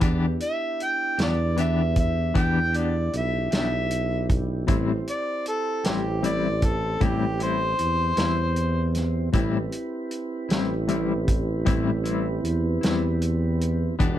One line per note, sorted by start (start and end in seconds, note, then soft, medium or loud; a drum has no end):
0.00 0.38 E2 medium
0.00 0.24 E3 medium
0.00 0.25 B3 medium
0.00 0.25 D4 medium
0.00 4.65 D4 medium
0.00 0.25 G4 medium
0.00 4.65 G4 medium
0.00 kick loud
0.00 closed hi-hat medium
0.05 4.65 B3 medium
0.05 4.66 E4 medium
0.40 0.84 E5 loud
0.40 closed hi-hat medium
0.80 1.19 G5 medium
0.80 closed hi-hat medium
1.18 2.31 E2 loud
1.18 1.42 B3 soft
1.18 1.42 D4 soft
1.18 1.41 G4 soft
1.18 1.57 D5 medium
1.18 snare medium
1.18 closed hi-hat medium
1.57 1.80 E3 soft
1.57 1.81 B3 medium
1.57 1.81 D4 medium
1.57 1.81 G4 medium
1.57 1.96 E5 medium
1.57 closed hi-hat medium
1.96 2.36 E5 medium
1.96 kick medium
1.96 closed hi-hat medium
2.34 3.09 E2 medium
2.34 2.58 E3 medium
2.34 2.58 B3 medium
2.34 2.58 D4 medium
2.34 2.59 G4 medium
2.34 2.78 G5 medium
2.34 kick medium
2.34 closed hi-hat medium
2.73 2.98 B3 soft
2.73 2.97 D4 soft
2.73 2.97 G4 soft
2.73 closed hi-hat medium
2.77 3.13 D5 medium
3.13 3.49 B1 medium
3.13 3.53 E5 medium
3.13 closed hi-hat medium
3.51 4.64 B1 medium
3.51 3.76 B3 soft
3.51 3.75 D4 soft
3.51 3.75 G4 soft
3.51 snare loud
3.51 closed hi-hat medium
3.55 4.29 E5 medium
3.91 closed hi-hat medium
4.30 kick medium
4.30 closed hi-hat medium
4.67 5.04 A1 medium
4.67 4.91 A2 medium
4.67 4.91 G3 medium
4.67 9.30 C4 medium
4.67 4.91 C4 medium
4.67 9.30 E4 medium
4.67 4.92 E4 medium
4.67 9.29 G4 medium
4.67 9.30 C5 medium
4.67 kick loud
4.67 closed hi-hat medium
5.08 5.46 D5 medium
5.08 closed hi-hat medium
5.46 5.88 A4 medium
5.46 closed hi-hat medium
5.84 6.97 A1 medium
5.84 6.09 G3 soft
5.84 6.08 C4 soft
5.84 6.08 E4 soft
5.84 6.23 G4 medium
5.84 snare loud
5.84 closed hi-hat medium
6.23 6.46 A2 medium
6.23 6.46 G3 medium
6.23 6.47 C4 medium
6.23 6.47 E4 medium
6.23 6.66 D5 medium
6.23 closed hi-hat medium
6.62 7.06 A4 medium
6.62 kick medium
6.62 closed hi-hat medium
7.00 7.75 A1 medium
7.00 7.24 A2 medium
7.00 7.24 G3 medium
7.00 7.25 C4 medium
7.00 7.25 E4 medium
7.00 7.40 G4 medium
7.00 kick loud
7.00 closed hi-hat medium
7.39 7.64 G3 soft
7.39 7.63 C4 soft
7.39 7.63 E4 medium
7.39 closed hi-hat medium
7.43 8.93 C5 medium
7.79 8.15 E2 medium
7.79 closed hi-hat medium
8.16 9.30 E2 medium
8.16 8.41 G3 soft
8.16 8.40 C4 soft
8.16 8.40 E4 soft
8.16 snare loud
8.16 closed hi-hat medium
8.56 closed hi-hat medium
8.95 snare soft
8.95 closed hi-hat medium
9.33 9.69 A1 medium
9.33 9.57 A2 medium
9.33 9.57 G3 medium
9.33 9.57 C4 medium
9.33 13.96 C4 medium
9.33 9.57 E4 medium
9.33 13.96 E4 medium
9.33 13.96 G4 medium
9.33 13.96 B4 medium
9.33 kick loud
9.33 closed hi-hat medium
9.72 closed hi-hat medium
10.11 closed hi-hat medium
10.49 11.62 A1 medium
10.49 10.74 G3 soft
10.49 10.73 C4 soft
10.49 10.73 E4 medium
10.49 snare loud
10.49 closed hi-hat medium
10.88 11.12 A2 medium
10.88 11.12 G3 medium
10.88 11.12 C4 medium
10.88 11.13 E4 medium
10.88 closed hi-hat medium
11.28 kick medium
11.28 closed hi-hat medium
11.65 12.40 A1 medium
11.65 11.89 A2 medium
11.65 11.90 G3 medium
11.65 11.90 C4 medium
11.65 11.90 E4 medium
11.65 kick loud
11.65 closed hi-hat medium
12.04 12.29 G3 soft
12.04 12.28 C4 soft
12.04 12.28 E4 medium
12.04 closed hi-hat medium
12.43 12.79 E2 medium
12.43 closed hi-hat medium
12.81 13.95 E2 medium
12.81 13.07 G3 soft
12.81 13.06 C4 soft
12.81 13.05 E4 medium
12.81 snare loud
12.81 closed hi-hat medium
13.22 closed hi-hat medium
13.61 closed hi-hat medium
13.99 14.19 E1 medium
13.99 14.19 E3 medium
13.99 14.19 B3 medium
13.99 14.19 D4 medium
13.99 14.19 G4 medium
13.99 14.19 B4 medium
13.99 14.19 F#5 medium
13.99 kick loud
13.99 closed hi-hat medium